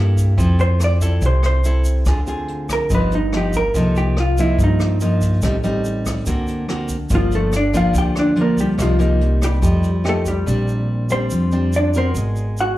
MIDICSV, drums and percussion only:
0, 0, Header, 1, 2, 480
1, 0, Start_track
1, 0, Key_signature, -2, "minor"
1, 0, Tempo, 420168
1, 434, Time_signature, 4, 2, 24, 8
1, 14599, End_track
2, 0, Start_track
2, 0, Title_t, "Drums"
2, 191, Note_on_c, 9, 36, 23
2, 199, Note_on_c, 9, 42, 43
2, 202, Note_on_c, 9, 82, 54
2, 306, Note_off_c, 9, 36, 0
2, 313, Note_off_c, 9, 42, 0
2, 317, Note_off_c, 9, 82, 0
2, 429, Note_on_c, 9, 42, 52
2, 431, Note_on_c, 9, 36, 51
2, 449, Note_on_c, 9, 82, 54
2, 543, Note_off_c, 9, 42, 0
2, 545, Note_off_c, 9, 36, 0
2, 563, Note_off_c, 9, 82, 0
2, 667, Note_on_c, 9, 42, 39
2, 683, Note_on_c, 9, 82, 25
2, 781, Note_off_c, 9, 42, 0
2, 797, Note_off_c, 9, 82, 0
2, 912, Note_on_c, 9, 37, 51
2, 912, Note_on_c, 9, 42, 38
2, 920, Note_on_c, 9, 82, 50
2, 1027, Note_off_c, 9, 37, 0
2, 1027, Note_off_c, 9, 42, 0
2, 1034, Note_off_c, 9, 82, 0
2, 1152, Note_on_c, 9, 36, 22
2, 1157, Note_on_c, 9, 42, 40
2, 1158, Note_on_c, 9, 82, 58
2, 1266, Note_off_c, 9, 36, 0
2, 1271, Note_off_c, 9, 42, 0
2, 1273, Note_off_c, 9, 82, 0
2, 1391, Note_on_c, 9, 36, 52
2, 1391, Note_on_c, 9, 82, 58
2, 1392, Note_on_c, 9, 42, 54
2, 1505, Note_off_c, 9, 36, 0
2, 1505, Note_off_c, 9, 82, 0
2, 1506, Note_off_c, 9, 42, 0
2, 1631, Note_on_c, 9, 37, 53
2, 1631, Note_on_c, 9, 42, 40
2, 1641, Note_on_c, 9, 82, 23
2, 1745, Note_off_c, 9, 37, 0
2, 1745, Note_off_c, 9, 42, 0
2, 1756, Note_off_c, 9, 82, 0
2, 1871, Note_on_c, 9, 42, 38
2, 1877, Note_on_c, 9, 82, 53
2, 1985, Note_off_c, 9, 42, 0
2, 1991, Note_off_c, 9, 82, 0
2, 2109, Note_on_c, 9, 82, 57
2, 2112, Note_on_c, 9, 36, 23
2, 2118, Note_on_c, 9, 42, 39
2, 2223, Note_off_c, 9, 82, 0
2, 2227, Note_off_c, 9, 36, 0
2, 2232, Note_off_c, 9, 42, 0
2, 2346, Note_on_c, 9, 82, 56
2, 2355, Note_on_c, 9, 36, 53
2, 2358, Note_on_c, 9, 37, 53
2, 2358, Note_on_c, 9, 42, 47
2, 2460, Note_off_c, 9, 82, 0
2, 2470, Note_off_c, 9, 36, 0
2, 2472, Note_off_c, 9, 37, 0
2, 2472, Note_off_c, 9, 42, 0
2, 2592, Note_on_c, 9, 82, 25
2, 2600, Note_on_c, 9, 42, 37
2, 2706, Note_off_c, 9, 82, 0
2, 2714, Note_off_c, 9, 42, 0
2, 2835, Note_on_c, 9, 42, 38
2, 2949, Note_off_c, 9, 42, 0
2, 3073, Note_on_c, 9, 36, 22
2, 3075, Note_on_c, 9, 37, 55
2, 3075, Note_on_c, 9, 42, 38
2, 3077, Note_on_c, 9, 82, 58
2, 3187, Note_off_c, 9, 36, 0
2, 3189, Note_off_c, 9, 37, 0
2, 3189, Note_off_c, 9, 42, 0
2, 3192, Note_off_c, 9, 82, 0
2, 3312, Note_on_c, 9, 42, 51
2, 3313, Note_on_c, 9, 82, 62
2, 3314, Note_on_c, 9, 36, 54
2, 3427, Note_off_c, 9, 42, 0
2, 3427, Note_off_c, 9, 82, 0
2, 3428, Note_off_c, 9, 36, 0
2, 3559, Note_on_c, 9, 42, 42
2, 3562, Note_on_c, 9, 82, 24
2, 3673, Note_off_c, 9, 42, 0
2, 3676, Note_off_c, 9, 82, 0
2, 3798, Note_on_c, 9, 37, 55
2, 3798, Note_on_c, 9, 42, 41
2, 3912, Note_off_c, 9, 37, 0
2, 3912, Note_off_c, 9, 42, 0
2, 4035, Note_on_c, 9, 82, 59
2, 4036, Note_on_c, 9, 36, 23
2, 4036, Note_on_c, 9, 42, 41
2, 4150, Note_off_c, 9, 36, 0
2, 4150, Note_off_c, 9, 82, 0
2, 4151, Note_off_c, 9, 42, 0
2, 4277, Note_on_c, 9, 36, 54
2, 4277, Note_on_c, 9, 42, 55
2, 4281, Note_on_c, 9, 82, 55
2, 4391, Note_off_c, 9, 36, 0
2, 4392, Note_off_c, 9, 42, 0
2, 4396, Note_off_c, 9, 82, 0
2, 4521, Note_on_c, 9, 42, 41
2, 4521, Note_on_c, 9, 82, 25
2, 4635, Note_off_c, 9, 82, 0
2, 4636, Note_off_c, 9, 42, 0
2, 4760, Note_on_c, 9, 37, 56
2, 4760, Note_on_c, 9, 42, 42
2, 4875, Note_off_c, 9, 37, 0
2, 4875, Note_off_c, 9, 42, 0
2, 4997, Note_on_c, 9, 36, 22
2, 4998, Note_on_c, 9, 42, 42
2, 5000, Note_on_c, 9, 82, 59
2, 5111, Note_off_c, 9, 36, 0
2, 5112, Note_off_c, 9, 42, 0
2, 5115, Note_off_c, 9, 82, 0
2, 5237, Note_on_c, 9, 42, 52
2, 5238, Note_on_c, 9, 36, 56
2, 5249, Note_on_c, 9, 82, 55
2, 5351, Note_off_c, 9, 42, 0
2, 5352, Note_off_c, 9, 36, 0
2, 5364, Note_off_c, 9, 82, 0
2, 5481, Note_on_c, 9, 82, 26
2, 5482, Note_on_c, 9, 37, 56
2, 5482, Note_on_c, 9, 42, 41
2, 5596, Note_off_c, 9, 37, 0
2, 5596, Note_off_c, 9, 42, 0
2, 5596, Note_off_c, 9, 82, 0
2, 5716, Note_on_c, 9, 82, 55
2, 5721, Note_on_c, 9, 42, 40
2, 5831, Note_off_c, 9, 82, 0
2, 5835, Note_off_c, 9, 42, 0
2, 5957, Note_on_c, 9, 82, 56
2, 5960, Note_on_c, 9, 36, 23
2, 5965, Note_on_c, 9, 42, 41
2, 6071, Note_off_c, 9, 82, 0
2, 6075, Note_off_c, 9, 36, 0
2, 6079, Note_off_c, 9, 42, 0
2, 6191, Note_on_c, 9, 82, 55
2, 6200, Note_on_c, 9, 36, 54
2, 6204, Note_on_c, 9, 37, 52
2, 6204, Note_on_c, 9, 42, 53
2, 6305, Note_off_c, 9, 82, 0
2, 6314, Note_off_c, 9, 36, 0
2, 6319, Note_off_c, 9, 37, 0
2, 6319, Note_off_c, 9, 42, 0
2, 6439, Note_on_c, 9, 42, 37
2, 6441, Note_on_c, 9, 82, 26
2, 6553, Note_off_c, 9, 42, 0
2, 6556, Note_off_c, 9, 82, 0
2, 6680, Note_on_c, 9, 82, 48
2, 6688, Note_on_c, 9, 42, 37
2, 6794, Note_off_c, 9, 82, 0
2, 6802, Note_off_c, 9, 42, 0
2, 6921, Note_on_c, 9, 36, 23
2, 6921, Note_on_c, 9, 82, 62
2, 6927, Note_on_c, 9, 37, 57
2, 6927, Note_on_c, 9, 42, 37
2, 7035, Note_off_c, 9, 36, 0
2, 7035, Note_off_c, 9, 82, 0
2, 7041, Note_off_c, 9, 37, 0
2, 7041, Note_off_c, 9, 42, 0
2, 7154, Note_on_c, 9, 82, 62
2, 7161, Note_on_c, 9, 36, 56
2, 7168, Note_on_c, 9, 42, 50
2, 7268, Note_off_c, 9, 82, 0
2, 7275, Note_off_c, 9, 36, 0
2, 7282, Note_off_c, 9, 42, 0
2, 7395, Note_on_c, 9, 82, 25
2, 7407, Note_on_c, 9, 42, 41
2, 7509, Note_off_c, 9, 82, 0
2, 7521, Note_off_c, 9, 42, 0
2, 7638, Note_on_c, 9, 37, 52
2, 7638, Note_on_c, 9, 42, 38
2, 7752, Note_off_c, 9, 37, 0
2, 7752, Note_off_c, 9, 42, 0
2, 7868, Note_on_c, 9, 82, 61
2, 7877, Note_on_c, 9, 36, 23
2, 7878, Note_on_c, 9, 42, 42
2, 7982, Note_off_c, 9, 82, 0
2, 7991, Note_off_c, 9, 36, 0
2, 7992, Note_off_c, 9, 42, 0
2, 8107, Note_on_c, 9, 82, 54
2, 8110, Note_on_c, 9, 42, 53
2, 8114, Note_on_c, 9, 36, 56
2, 8222, Note_off_c, 9, 82, 0
2, 8224, Note_off_c, 9, 42, 0
2, 8228, Note_off_c, 9, 36, 0
2, 8356, Note_on_c, 9, 42, 39
2, 8360, Note_on_c, 9, 82, 26
2, 8470, Note_off_c, 9, 42, 0
2, 8474, Note_off_c, 9, 82, 0
2, 8596, Note_on_c, 9, 37, 52
2, 8596, Note_on_c, 9, 42, 44
2, 8598, Note_on_c, 9, 82, 50
2, 8710, Note_off_c, 9, 37, 0
2, 8710, Note_off_c, 9, 42, 0
2, 8712, Note_off_c, 9, 82, 0
2, 8835, Note_on_c, 9, 36, 22
2, 8837, Note_on_c, 9, 42, 42
2, 8843, Note_on_c, 9, 82, 57
2, 8950, Note_off_c, 9, 36, 0
2, 8951, Note_off_c, 9, 42, 0
2, 8957, Note_off_c, 9, 82, 0
2, 9075, Note_on_c, 9, 36, 54
2, 9076, Note_on_c, 9, 42, 56
2, 9076, Note_on_c, 9, 82, 63
2, 9189, Note_off_c, 9, 36, 0
2, 9190, Note_off_c, 9, 42, 0
2, 9190, Note_off_c, 9, 82, 0
2, 9316, Note_on_c, 9, 37, 55
2, 9316, Note_on_c, 9, 42, 45
2, 9324, Note_on_c, 9, 82, 26
2, 9431, Note_off_c, 9, 37, 0
2, 9431, Note_off_c, 9, 42, 0
2, 9438, Note_off_c, 9, 82, 0
2, 9553, Note_on_c, 9, 42, 40
2, 9668, Note_off_c, 9, 42, 0
2, 9794, Note_on_c, 9, 36, 22
2, 9799, Note_on_c, 9, 42, 42
2, 9802, Note_on_c, 9, 82, 54
2, 9908, Note_off_c, 9, 36, 0
2, 9913, Note_off_c, 9, 42, 0
2, 9916, Note_off_c, 9, 82, 0
2, 10035, Note_on_c, 9, 36, 55
2, 10038, Note_on_c, 9, 37, 54
2, 10038, Note_on_c, 9, 42, 54
2, 10042, Note_on_c, 9, 82, 57
2, 10149, Note_off_c, 9, 36, 0
2, 10153, Note_off_c, 9, 37, 0
2, 10153, Note_off_c, 9, 42, 0
2, 10156, Note_off_c, 9, 82, 0
2, 10279, Note_on_c, 9, 42, 39
2, 10284, Note_on_c, 9, 82, 26
2, 10393, Note_off_c, 9, 42, 0
2, 10398, Note_off_c, 9, 82, 0
2, 10521, Note_on_c, 9, 42, 38
2, 10635, Note_off_c, 9, 42, 0
2, 10754, Note_on_c, 9, 36, 22
2, 10758, Note_on_c, 9, 37, 56
2, 10758, Note_on_c, 9, 42, 40
2, 10765, Note_on_c, 9, 82, 60
2, 10868, Note_off_c, 9, 36, 0
2, 10873, Note_off_c, 9, 37, 0
2, 10873, Note_off_c, 9, 42, 0
2, 10879, Note_off_c, 9, 82, 0
2, 10994, Note_on_c, 9, 36, 54
2, 10998, Note_on_c, 9, 42, 53
2, 11001, Note_on_c, 9, 82, 56
2, 11108, Note_off_c, 9, 36, 0
2, 11113, Note_off_c, 9, 42, 0
2, 11115, Note_off_c, 9, 82, 0
2, 11235, Note_on_c, 9, 82, 26
2, 11236, Note_on_c, 9, 42, 39
2, 11349, Note_off_c, 9, 82, 0
2, 11350, Note_off_c, 9, 42, 0
2, 11482, Note_on_c, 9, 37, 52
2, 11482, Note_on_c, 9, 42, 37
2, 11596, Note_off_c, 9, 37, 0
2, 11596, Note_off_c, 9, 42, 0
2, 11716, Note_on_c, 9, 82, 62
2, 11717, Note_on_c, 9, 36, 22
2, 11722, Note_on_c, 9, 42, 41
2, 11831, Note_off_c, 9, 36, 0
2, 11831, Note_off_c, 9, 82, 0
2, 11837, Note_off_c, 9, 42, 0
2, 11968, Note_on_c, 9, 82, 55
2, 12082, Note_off_c, 9, 82, 0
2, 12203, Note_on_c, 9, 82, 25
2, 12317, Note_off_c, 9, 82, 0
2, 12676, Note_on_c, 9, 82, 59
2, 12790, Note_off_c, 9, 82, 0
2, 12913, Note_on_c, 9, 82, 60
2, 13027, Note_off_c, 9, 82, 0
2, 13155, Note_on_c, 9, 82, 23
2, 13269, Note_off_c, 9, 82, 0
2, 13398, Note_on_c, 9, 82, 54
2, 13512, Note_off_c, 9, 82, 0
2, 13640, Note_on_c, 9, 82, 55
2, 13754, Note_off_c, 9, 82, 0
2, 13883, Note_on_c, 9, 82, 58
2, 13997, Note_off_c, 9, 82, 0
2, 14122, Note_on_c, 9, 82, 26
2, 14236, Note_off_c, 9, 82, 0
2, 14366, Note_on_c, 9, 82, 50
2, 14480, Note_off_c, 9, 82, 0
2, 14599, End_track
0, 0, End_of_file